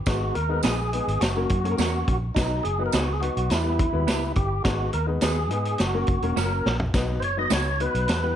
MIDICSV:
0, 0, Header, 1, 6, 480
1, 0, Start_track
1, 0, Key_signature, 5, "major"
1, 0, Tempo, 572519
1, 56, Time_signature, 4, 2, 24, 8
1, 7006, End_track
2, 0, Start_track
2, 0, Title_t, "Tonewheel organ"
2, 0, Program_c, 0, 16
2, 54, Note_on_c, 0, 66, 88
2, 291, Note_on_c, 0, 70, 89
2, 303, Note_off_c, 0, 66, 0
2, 517, Note_off_c, 0, 70, 0
2, 531, Note_on_c, 0, 68, 76
2, 1012, Note_on_c, 0, 66, 80
2, 1029, Note_off_c, 0, 68, 0
2, 1479, Note_off_c, 0, 66, 0
2, 1489, Note_on_c, 0, 66, 82
2, 1828, Note_off_c, 0, 66, 0
2, 1967, Note_on_c, 0, 63, 84
2, 2208, Note_on_c, 0, 68, 98
2, 2220, Note_off_c, 0, 63, 0
2, 2375, Note_off_c, 0, 68, 0
2, 2396, Note_on_c, 0, 70, 82
2, 2470, Note_off_c, 0, 70, 0
2, 2476, Note_on_c, 0, 68, 68
2, 2543, Note_on_c, 0, 66, 64
2, 2549, Note_off_c, 0, 68, 0
2, 2621, Note_off_c, 0, 66, 0
2, 2624, Note_on_c, 0, 68, 75
2, 2686, Note_on_c, 0, 66, 87
2, 2699, Note_off_c, 0, 68, 0
2, 2939, Note_on_c, 0, 64, 78
2, 2940, Note_off_c, 0, 66, 0
2, 3625, Note_off_c, 0, 64, 0
2, 3656, Note_on_c, 0, 67, 80
2, 3880, Note_off_c, 0, 67, 0
2, 3891, Note_on_c, 0, 66, 88
2, 4117, Note_off_c, 0, 66, 0
2, 4138, Note_on_c, 0, 70, 84
2, 4246, Note_off_c, 0, 70, 0
2, 4384, Note_on_c, 0, 68, 70
2, 4868, Note_on_c, 0, 66, 80
2, 4876, Note_off_c, 0, 68, 0
2, 5350, Note_on_c, 0, 70, 69
2, 5357, Note_off_c, 0, 66, 0
2, 5679, Note_off_c, 0, 70, 0
2, 6037, Note_on_c, 0, 72, 64
2, 6063, Note_off_c, 0, 72, 0
2, 6073, Note_on_c, 0, 73, 88
2, 6189, Note_off_c, 0, 73, 0
2, 6193, Note_on_c, 0, 75, 99
2, 6309, Note_off_c, 0, 75, 0
2, 6316, Note_on_c, 0, 73, 84
2, 6549, Note_on_c, 0, 71, 80
2, 6554, Note_off_c, 0, 73, 0
2, 7006, Note_off_c, 0, 71, 0
2, 7006, End_track
3, 0, Start_track
3, 0, Title_t, "Clean electric guitar"
3, 0, Program_c, 1, 27
3, 533, Note_on_c, 1, 59, 72
3, 538, Note_on_c, 1, 63, 85
3, 542, Note_on_c, 1, 68, 92
3, 544, Note_on_c, 1, 71, 80
3, 656, Note_off_c, 1, 59, 0
3, 658, Note_off_c, 1, 63, 0
3, 660, Note_off_c, 1, 68, 0
3, 662, Note_off_c, 1, 71, 0
3, 1499, Note_on_c, 1, 58, 76
3, 1504, Note_on_c, 1, 61, 71
3, 1504, Note_on_c, 1, 66, 74
3, 1510, Note_on_c, 1, 70, 78
3, 1619, Note_off_c, 1, 58, 0
3, 1622, Note_off_c, 1, 61, 0
3, 1622, Note_off_c, 1, 66, 0
3, 1625, Note_off_c, 1, 70, 0
3, 2459, Note_on_c, 1, 59, 84
3, 2462, Note_on_c, 1, 63, 83
3, 2464, Note_on_c, 1, 66, 73
3, 2466, Note_on_c, 1, 71, 88
3, 2580, Note_off_c, 1, 59, 0
3, 2581, Note_off_c, 1, 63, 0
3, 2582, Note_off_c, 1, 66, 0
3, 2583, Note_off_c, 1, 71, 0
3, 3417, Note_on_c, 1, 59, 72
3, 3421, Note_on_c, 1, 64, 73
3, 3422, Note_on_c, 1, 67, 86
3, 3423, Note_on_c, 1, 71, 89
3, 3538, Note_off_c, 1, 59, 0
3, 3541, Note_off_c, 1, 64, 0
3, 3541, Note_off_c, 1, 67, 0
3, 3542, Note_off_c, 1, 71, 0
3, 4379, Note_on_c, 1, 59, 74
3, 4383, Note_on_c, 1, 63, 80
3, 4385, Note_on_c, 1, 68, 79
3, 4387, Note_on_c, 1, 71, 82
3, 4500, Note_off_c, 1, 59, 0
3, 4502, Note_off_c, 1, 63, 0
3, 4503, Note_off_c, 1, 68, 0
3, 4504, Note_off_c, 1, 71, 0
3, 5336, Note_on_c, 1, 58, 72
3, 5340, Note_on_c, 1, 61, 76
3, 5341, Note_on_c, 1, 66, 77
3, 5345, Note_on_c, 1, 70, 70
3, 5458, Note_off_c, 1, 58, 0
3, 5460, Note_off_c, 1, 61, 0
3, 5461, Note_off_c, 1, 66, 0
3, 5463, Note_off_c, 1, 70, 0
3, 6290, Note_on_c, 1, 59, 79
3, 6294, Note_on_c, 1, 63, 84
3, 6297, Note_on_c, 1, 66, 85
3, 6299, Note_on_c, 1, 71, 87
3, 6415, Note_off_c, 1, 59, 0
3, 6417, Note_off_c, 1, 63, 0
3, 6418, Note_off_c, 1, 66, 0
3, 6420, Note_off_c, 1, 71, 0
3, 7006, End_track
4, 0, Start_track
4, 0, Title_t, "Upright piano"
4, 0, Program_c, 2, 0
4, 52, Note_on_c, 2, 56, 69
4, 53, Note_on_c, 2, 59, 66
4, 58, Note_on_c, 2, 63, 58
4, 62, Note_on_c, 2, 71, 76
4, 273, Note_off_c, 2, 56, 0
4, 274, Note_off_c, 2, 59, 0
4, 276, Note_off_c, 2, 63, 0
4, 278, Note_off_c, 2, 71, 0
4, 409, Note_on_c, 2, 56, 67
4, 413, Note_on_c, 2, 59, 60
4, 414, Note_on_c, 2, 63, 61
4, 417, Note_on_c, 2, 71, 73
4, 632, Note_off_c, 2, 56, 0
4, 634, Note_off_c, 2, 59, 0
4, 634, Note_off_c, 2, 63, 0
4, 636, Note_off_c, 2, 71, 0
4, 770, Note_on_c, 2, 56, 59
4, 776, Note_on_c, 2, 59, 54
4, 780, Note_on_c, 2, 63, 51
4, 782, Note_on_c, 2, 71, 65
4, 993, Note_off_c, 2, 56, 0
4, 996, Note_off_c, 2, 59, 0
4, 998, Note_off_c, 2, 63, 0
4, 999, Note_off_c, 2, 71, 0
4, 1135, Note_on_c, 2, 54, 61
4, 1138, Note_on_c, 2, 58, 58
4, 1142, Note_on_c, 2, 61, 61
4, 1146, Note_on_c, 2, 70, 75
4, 1282, Note_off_c, 2, 54, 0
4, 1284, Note_off_c, 2, 58, 0
4, 1286, Note_off_c, 2, 61, 0
4, 1288, Note_off_c, 2, 70, 0
4, 1372, Note_on_c, 2, 54, 74
4, 1373, Note_on_c, 2, 58, 67
4, 1378, Note_on_c, 2, 61, 66
4, 1381, Note_on_c, 2, 69, 66
4, 1434, Note_off_c, 2, 69, 0
4, 1436, Note_on_c, 2, 70, 80
4, 1740, Note_off_c, 2, 54, 0
4, 1740, Note_off_c, 2, 58, 0
4, 1743, Note_off_c, 2, 61, 0
4, 1772, Note_off_c, 2, 70, 0
4, 1971, Note_on_c, 2, 54, 66
4, 1976, Note_on_c, 2, 59, 58
4, 1979, Note_on_c, 2, 63, 60
4, 1982, Note_on_c, 2, 71, 68
4, 2194, Note_off_c, 2, 54, 0
4, 2196, Note_off_c, 2, 59, 0
4, 2198, Note_off_c, 2, 63, 0
4, 2199, Note_off_c, 2, 71, 0
4, 2333, Note_on_c, 2, 54, 63
4, 2337, Note_on_c, 2, 59, 67
4, 2340, Note_on_c, 2, 63, 61
4, 2345, Note_on_c, 2, 71, 73
4, 2555, Note_off_c, 2, 54, 0
4, 2557, Note_off_c, 2, 59, 0
4, 2558, Note_off_c, 2, 63, 0
4, 2560, Note_off_c, 2, 71, 0
4, 2693, Note_on_c, 2, 54, 56
4, 2694, Note_on_c, 2, 59, 59
4, 2699, Note_on_c, 2, 63, 50
4, 2701, Note_on_c, 2, 71, 71
4, 2915, Note_off_c, 2, 54, 0
4, 2915, Note_off_c, 2, 59, 0
4, 2917, Note_off_c, 2, 63, 0
4, 2919, Note_off_c, 2, 71, 0
4, 3048, Note_on_c, 2, 55, 65
4, 3052, Note_on_c, 2, 59, 63
4, 3056, Note_on_c, 2, 64, 61
4, 3058, Note_on_c, 2, 71, 77
4, 3199, Note_off_c, 2, 55, 0
4, 3201, Note_off_c, 2, 59, 0
4, 3203, Note_off_c, 2, 64, 0
4, 3204, Note_off_c, 2, 71, 0
4, 3288, Note_on_c, 2, 54, 54
4, 3289, Note_on_c, 2, 59, 65
4, 3293, Note_on_c, 2, 64, 61
4, 3297, Note_on_c, 2, 71, 80
4, 3340, Note_on_c, 2, 55, 67
4, 3348, Note_off_c, 2, 54, 0
4, 3659, Note_off_c, 2, 59, 0
4, 3661, Note_off_c, 2, 64, 0
4, 3663, Note_off_c, 2, 71, 0
4, 3684, Note_off_c, 2, 55, 0
4, 3888, Note_on_c, 2, 56, 65
4, 3892, Note_on_c, 2, 59, 61
4, 3896, Note_on_c, 2, 63, 63
4, 3898, Note_on_c, 2, 71, 69
4, 4112, Note_off_c, 2, 56, 0
4, 4114, Note_off_c, 2, 59, 0
4, 4116, Note_off_c, 2, 63, 0
4, 4117, Note_off_c, 2, 71, 0
4, 4247, Note_on_c, 2, 56, 67
4, 4250, Note_on_c, 2, 59, 57
4, 4252, Note_on_c, 2, 63, 55
4, 4256, Note_on_c, 2, 71, 71
4, 4472, Note_off_c, 2, 56, 0
4, 4473, Note_off_c, 2, 59, 0
4, 4474, Note_off_c, 2, 63, 0
4, 4476, Note_off_c, 2, 71, 0
4, 4610, Note_on_c, 2, 56, 61
4, 4614, Note_on_c, 2, 59, 53
4, 4618, Note_on_c, 2, 63, 56
4, 4622, Note_on_c, 2, 71, 66
4, 4833, Note_off_c, 2, 56, 0
4, 4835, Note_off_c, 2, 59, 0
4, 4837, Note_off_c, 2, 63, 0
4, 4839, Note_off_c, 2, 71, 0
4, 4975, Note_on_c, 2, 54, 64
4, 4976, Note_on_c, 2, 58, 66
4, 4979, Note_on_c, 2, 61, 64
4, 4983, Note_on_c, 2, 70, 73
4, 5123, Note_off_c, 2, 54, 0
4, 5123, Note_off_c, 2, 58, 0
4, 5125, Note_off_c, 2, 61, 0
4, 5127, Note_off_c, 2, 70, 0
4, 5214, Note_on_c, 2, 54, 69
4, 5220, Note_on_c, 2, 58, 65
4, 5223, Note_on_c, 2, 61, 67
4, 5226, Note_on_c, 2, 70, 80
4, 5581, Note_off_c, 2, 54, 0
4, 5584, Note_off_c, 2, 58, 0
4, 5586, Note_off_c, 2, 61, 0
4, 5587, Note_off_c, 2, 70, 0
4, 5816, Note_on_c, 2, 54, 78
4, 5818, Note_on_c, 2, 59, 74
4, 5824, Note_on_c, 2, 63, 72
4, 5824, Note_on_c, 2, 71, 92
4, 6036, Note_off_c, 2, 54, 0
4, 6037, Note_off_c, 2, 59, 0
4, 6040, Note_off_c, 2, 63, 0
4, 6040, Note_off_c, 2, 71, 0
4, 6179, Note_on_c, 2, 54, 69
4, 6182, Note_on_c, 2, 59, 58
4, 6185, Note_on_c, 2, 63, 65
4, 6187, Note_on_c, 2, 71, 74
4, 6397, Note_off_c, 2, 54, 0
4, 6399, Note_off_c, 2, 59, 0
4, 6400, Note_off_c, 2, 63, 0
4, 6402, Note_off_c, 2, 71, 0
4, 6537, Note_on_c, 2, 54, 62
4, 6542, Note_on_c, 2, 59, 59
4, 6544, Note_on_c, 2, 63, 54
4, 6548, Note_on_c, 2, 71, 72
4, 6756, Note_off_c, 2, 54, 0
4, 6758, Note_off_c, 2, 59, 0
4, 6760, Note_off_c, 2, 63, 0
4, 6761, Note_off_c, 2, 71, 0
4, 6897, Note_on_c, 2, 55, 65
4, 6899, Note_on_c, 2, 59, 60
4, 6901, Note_on_c, 2, 64, 61
4, 6905, Note_on_c, 2, 71, 75
4, 7006, Note_off_c, 2, 55, 0
4, 7006, Note_off_c, 2, 59, 0
4, 7006, Note_off_c, 2, 64, 0
4, 7006, Note_off_c, 2, 71, 0
4, 7006, End_track
5, 0, Start_track
5, 0, Title_t, "Fingered electric bass"
5, 0, Program_c, 3, 33
5, 57, Note_on_c, 3, 32, 94
5, 252, Note_off_c, 3, 32, 0
5, 301, Note_on_c, 3, 39, 72
5, 495, Note_off_c, 3, 39, 0
5, 541, Note_on_c, 3, 34, 77
5, 833, Note_off_c, 3, 34, 0
5, 902, Note_on_c, 3, 32, 75
5, 998, Note_off_c, 3, 32, 0
5, 1018, Note_on_c, 3, 30, 81
5, 1213, Note_off_c, 3, 30, 0
5, 1260, Note_on_c, 3, 42, 88
5, 1454, Note_off_c, 3, 42, 0
5, 1496, Note_on_c, 3, 40, 89
5, 1692, Note_off_c, 3, 40, 0
5, 1742, Note_on_c, 3, 34, 83
5, 1936, Note_off_c, 3, 34, 0
5, 1980, Note_on_c, 3, 35, 93
5, 2174, Note_off_c, 3, 35, 0
5, 2222, Note_on_c, 3, 30, 70
5, 2416, Note_off_c, 3, 30, 0
5, 2459, Note_on_c, 3, 37, 79
5, 2752, Note_off_c, 3, 37, 0
5, 2824, Note_on_c, 3, 35, 86
5, 2919, Note_off_c, 3, 35, 0
5, 2938, Note_on_c, 3, 40, 94
5, 3231, Note_off_c, 3, 40, 0
5, 3300, Note_on_c, 3, 39, 82
5, 3423, Note_off_c, 3, 39, 0
5, 3423, Note_on_c, 3, 37, 84
5, 3617, Note_off_c, 3, 37, 0
5, 3660, Note_on_c, 3, 31, 80
5, 3855, Note_off_c, 3, 31, 0
5, 3899, Note_on_c, 3, 32, 88
5, 4094, Note_off_c, 3, 32, 0
5, 4142, Note_on_c, 3, 39, 81
5, 4336, Note_off_c, 3, 39, 0
5, 4380, Note_on_c, 3, 39, 82
5, 4618, Note_off_c, 3, 39, 0
5, 4618, Note_on_c, 3, 44, 96
5, 4814, Note_off_c, 3, 44, 0
5, 4863, Note_on_c, 3, 30, 83
5, 5056, Note_off_c, 3, 30, 0
5, 5098, Note_on_c, 3, 30, 77
5, 5196, Note_off_c, 3, 30, 0
5, 5218, Note_on_c, 3, 28, 78
5, 5316, Note_off_c, 3, 28, 0
5, 5343, Note_on_c, 3, 30, 76
5, 5536, Note_off_c, 3, 30, 0
5, 5581, Note_on_c, 3, 34, 85
5, 5775, Note_off_c, 3, 34, 0
5, 5818, Note_on_c, 3, 35, 82
5, 6056, Note_off_c, 3, 35, 0
5, 6056, Note_on_c, 3, 30, 72
5, 6252, Note_off_c, 3, 30, 0
5, 6298, Note_on_c, 3, 37, 83
5, 6591, Note_off_c, 3, 37, 0
5, 6661, Note_on_c, 3, 35, 84
5, 6757, Note_off_c, 3, 35, 0
5, 6783, Note_on_c, 3, 40, 93
5, 6976, Note_off_c, 3, 40, 0
5, 7006, End_track
6, 0, Start_track
6, 0, Title_t, "Drums"
6, 50, Note_on_c, 9, 54, 73
6, 54, Note_on_c, 9, 42, 83
6, 56, Note_on_c, 9, 36, 106
6, 57, Note_on_c, 9, 38, 99
6, 133, Note_off_c, 9, 54, 0
6, 138, Note_off_c, 9, 42, 0
6, 140, Note_off_c, 9, 36, 0
6, 141, Note_off_c, 9, 38, 0
6, 295, Note_on_c, 9, 42, 69
6, 379, Note_off_c, 9, 42, 0
6, 525, Note_on_c, 9, 54, 95
6, 530, Note_on_c, 9, 42, 77
6, 539, Note_on_c, 9, 38, 108
6, 609, Note_off_c, 9, 54, 0
6, 614, Note_off_c, 9, 42, 0
6, 623, Note_off_c, 9, 38, 0
6, 779, Note_on_c, 9, 42, 64
6, 863, Note_off_c, 9, 42, 0
6, 908, Note_on_c, 9, 42, 55
6, 992, Note_off_c, 9, 42, 0
6, 1014, Note_on_c, 9, 42, 74
6, 1023, Note_on_c, 9, 54, 80
6, 1026, Note_on_c, 9, 38, 98
6, 1098, Note_off_c, 9, 42, 0
6, 1107, Note_off_c, 9, 54, 0
6, 1110, Note_off_c, 9, 38, 0
6, 1253, Note_on_c, 9, 42, 68
6, 1260, Note_on_c, 9, 36, 75
6, 1337, Note_off_c, 9, 42, 0
6, 1344, Note_off_c, 9, 36, 0
6, 1384, Note_on_c, 9, 42, 52
6, 1468, Note_off_c, 9, 42, 0
6, 1495, Note_on_c, 9, 54, 81
6, 1503, Note_on_c, 9, 42, 68
6, 1509, Note_on_c, 9, 38, 83
6, 1579, Note_off_c, 9, 54, 0
6, 1587, Note_off_c, 9, 42, 0
6, 1593, Note_off_c, 9, 38, 0
6, 1742, Note_on_c, 9, 42, 60
6, 1743, Note_on_c, 9, 36, 79
6, 1826, Note_off_c, 9, 36, 0
6, 1826, Note_off_c, 9, 42, 0
6, 1980, Note_on_c, 9, 42, 85
6, 1981, Note_on_c, 9, 36, 92
6, 1982, Note_on_c, 9, 54, 81
6, 1984, Note_on_c, 9, 38, 101
6, 2064, Note_off_c, 9, 42, 0
6, 2065, Note_off_c, 9, 36, 0
6, 2066, Note_off_c, 9, 54, 0
6, 2068, Note_off_c, 9, 38, 0
6, 2219, Note_on_c, 9, 42, 68
6, 2303, Note_off_c, 9, 42, 0
6, 2452, Note_on_c, 9, 54, 99
6, 2456, Note_on_c, 9, 42, 83
6, 2465, Note_on_c, 9, 38, 112
6, 2536, Note_off_c, 9, 54, 0
6, 2540, Note_off_c, 9, 42, 0
6, 2549, Note_off_c, 9, 38, 0
6, 2703, Note_on_c, 9, 42, 70
6, 2787, Note_off_c, 9, 42, 0
6, 2825, Note_on_c, 9, 42, 58
6, 2909, Note_off_c, 9, 42, 0
6, 2934, Note_on_c, 9, 42, 67
6, 2943, Note_on_c, 9, 54, 74
6, 2946, Note_on_c, 9, 38, 86
6, 3018, Note_off_c, 9, 42, 0
6, 3027, Note_off_c, 9, 54, 0
6, 3030, Note_off_c, 9, 38, 0
6, 3179, Note_on_c, 9, 42, 64
6, 3181, Note_on_c, 9, 36, 87
6, 3263, Note_off_c, 9, 42, 0
6, 3265, Note_off_c, 9, 36, 0
6, 3418, Note_on_c, 9, 42, 68
6, 3419, Note_on_c, 9, 54, 81
6, 3424, Note_on_c, 9, 38, 83
6, 3502, Note_off_c, 9, 42, 0
6, 3503, Note_off_c, 9, 54, 0
6, 3507, Note_off_c, 9, 38, 0
6, 3652, Note_on_c, 9, 42, 65
6, 3659, Note_on_c, 9, 36, 77
6, 3736, Note_off_c, 9, 42, 0
6, 3743, Note_off_c, 9, 36, 0
6, 3894, Note_on_c, 9, 42, 77
6, 3898, Note_on_c, 9, 36, 87
6, 3898, Note_on_c, 9, 38, 99
6, 3900, Note_on_c, 9, 54, 72
6, 3978, Note_off_c, 9, 42, 0
6, 3981, Note_off_c, 9, 36, 0
6, 3982, Note_off_c, 9, 38, 0
6, 3984, Note_off_c, 9, 54, 0
6, 4131, Note_on_c, 9, 42, 65
6, 4215, Note_off_c, 9, 42, 0
6, 4368, Note_on_c, 9, 42, 84
6, 4372, Note_on_c, 9, 54, 98
6, 4377, Note_on_c, 9, 38, 111
6, 4452, Note_off_c, 9, 42, 0
6, 4456, Note_off_c, 9, 54, 0
6, 4461, Note_off_c, 9, 38, 0
6, 4616, Note_on_c, 9, 42, 66
6, 4700, Note_off_c, 9, 42, 0
6, 4739, Note_on_c, 9, 42, 54
6, 4823, Note_off_c, 9, 42, 0
6, 4847, Note_on_c, 9, 42, 72
6, 4859, Note_on_c, 9, 38, 89
6, 4863, Note_on_c, 9, 54, 76
6, 4931, Note_off_c, 9, 42, 0
6, 4943, Note_off_c, 9, 38, 0
6, 4946, Note_off_c, 9, 54, 0
6, 5087, Note_on_c, 9, 42, 58
6, 5098, Note_on_c, 9, 36, 88
6, 5170, Note_off_c, 9, 42, 0
6, 5182, Note_off_c, 9, 36, 0
6, 5218, Note_on_c, 9, 42, 47
6, 5302, Note_off_c, 9, 42, 0
6, 5340, Note_on_c, 9, 38, 52
6, 5341, Note_on_c, 9, 54, 76
6, 5424, Note_off_c, 9, 38, 0
6, 5425, Note_off_c, 9, 54, 0
6, 5584, Note_on_c, 9, 38, 84
6, 5668, Note_off_c, 9, 38, 0
6, 5698, Note_on_c, 9, 43, 79
6, 5781, Note_off_c, 9, 43, 0
6, 5816, Note_on_c, 9, 42, 80
6, 5819, Note_on_c, 9, 36, 94
6, 5819, Note_on_c, 9, 54, 73
6, 5820, Note_on_c, 9, 38, 100
6, 5900, Note_off_c, 9, 42, 0
6, 5902, Note_off_c, 9, 36, 0
6, 5902, Note_off_c, 9, 54, 0
6, 5904, Note_off_c, 9, 38, 0
6, 6055, Note_on_c, 9, 42, 68
6, 6139, Note_off_c, 9, 42, 0
6, 6290, Note_on_c, 9, 54, 103
6, 6292, Note_on_c, 9, 42, 79
6, 6301, Note_on_c, 9, 38, 111
6, 6374, Note_off_c, 9, 54, 0
6, 6376, Note_off_c, 9, 42, 0
6, 6385, Note_off_c, 9, 38, 0
6, 6540, Note_on_c, 9, 42, 65
6, 6624, Note_off_c, 9, 42, 0
6, 6664, Note_on_c, 9, 42, 56
6, 6748, Note_off_c, 9, 42, 0
6, 6772, Note_on_c, 9, 42, 69
6, 6783, Note_on_c, 9, 54, 81
6, 6784, Note_on_c, 9, 38, 91
6, 6856, Note_off_c, 9, 42, 0
6, 6867, Note_off_c, 9, 54, 0
6, 6868, Note_off_c, 9, 38, 0
6, 7006, End_track
0, 0, End_of_file